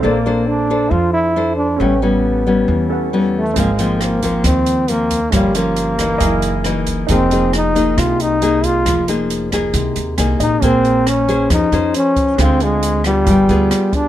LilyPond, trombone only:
\new Staff \with { instrumentName = "Trombone" } { \time 4/4 \key bes \dorian \tempo 4 = 136 bes4 d'4 f'8 e'4 d'8 | cis'8 b2 r4 a8 | aes4 bes4 c'4 bes4 | g8 bes2. r8 |
c'4 ees'4 f'8 ees'4 f'8~ | f'8 r2. ees'8 | c'4 des'4 ees'4 des'4 | c'8 aes4 g2 d'8 | }